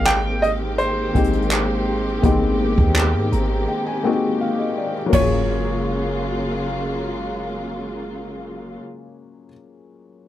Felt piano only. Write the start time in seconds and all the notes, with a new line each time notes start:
Already playing: G#3 A#3 C4 D#4 G4
1.14 G#3 A#3 C4 D#4 G4
2.22 G#3 A#3 B3 D#4 G4
2.30 C4
3.32 A#5
3.68 G5
3.87 G#5
4.03 G#3 A#3 C4 D#4 F#4 G5
4.13 G4
4.41 F5
4.59 D#5
4.77 D5
5.06 F#3 A#3
5.13 C#4 F4
5.20 G#4